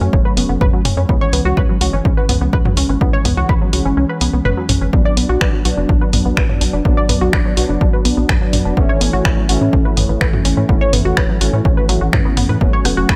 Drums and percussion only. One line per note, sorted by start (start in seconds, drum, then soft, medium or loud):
0.13 kick loud
0.37 open hi-hat medium
0.61 kick loud
0.61 mid tom medium
0.85 mid tom medium
0.85 open hi-hat medium
1.09 kick loud
1.33 open hi-hat medium
1.57 kick loud
1.81 open hi-hat medium
2.05 kick loud
2.29 mid tom medium
2.29 open hi-hat medium
2.53 kick loud
2.65 mid tom medium
2.77 open hi-hat medium
3.01 kick loud
3.25 mid tom medium
3.25 open hi-hat loud
3.49 kick loud
3.73 open hi-hat medium
4.21 open hi-hat loud
4.45 mid tom medium
4.69 mid tom medium
4.69 open hi-hat medium
4.93 kick loud
5.17 open hi-hat loud
5.41 finger snap loud
5.41 kick loud
5.65 open hi-hat loud
5.89 kick loud
6.13 mid tom medium
6.13 open hi-hat loud
6.37 finger snap loud
6.37 kick loud
6.49 mid tom medium
6.61 open hi-hat loud
6.85 kick loud
7.09 mid tom medium
7.09 open hi-hat loud
7.33 finger snap loud
7.33 kick loud
7.57 open hi-hat loud
7.81 kick loud
8.05 open hi-hat loud
8.29 finger snap loud
8.29 kick loud
8.29 mid tom medium
8.53 mid tom medium
8.53 open hi-hat loud
8.77 kick loud
9.01 open hi-hat loud
9.25 finger snap loud
9.25 kick loud
9.49 open hi-hat loud
9.73 kick loud
9.97 mid tom medium
9.97 open hi-hat loud
10.21 finger snap loud
10.21 kick loud
10.33 mid tom medium
10.45 open hi-hat loud
10.69 kick loud
10.93 mid tom medium
10.93 open hi-hat loud
11.17 finger snap loud
11.17 kick loud
11.41 open hi-hat loud
11.65 kick loud
11.89 open hi-hat loud
12.13 finger snap loud
12.13 kick loud
12.13 mid tom medium
12.37 mid tom medium
12.37 open hi-hat loud
12.61 kick loud
12.85 cross-stick medium
12.85 open hi-hat loud
13.09 finger snap loud
13.09 kick loud